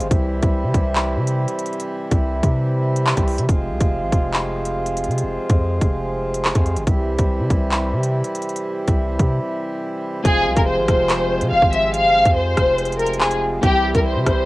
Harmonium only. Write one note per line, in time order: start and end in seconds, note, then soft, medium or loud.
0.00 3.45 C3 medium
0.11 3.46 E3 medium
0.11 3.46 G3 medium
0.11 3.46 E4 medium
3.49 6.84 C3 medium
3.49 6.84 F3 medium
3.49 6.84 G#3 medium
3.49 6.84 F4 medium
6.87 10.22 C3 medium
6.87 10.22 E3 medium
6.87 10.22 G3 medium
6.87 10.22 E4 medium
10.25 14.45 C3 medium
10.25 13.60 F3 medium
10.25 13.60 G#3 medium
10.25 13.60 F4 medium
13.63 14.45 E3 medium
13.63 14.45 G3 medium
13.63 14.45 E4 medium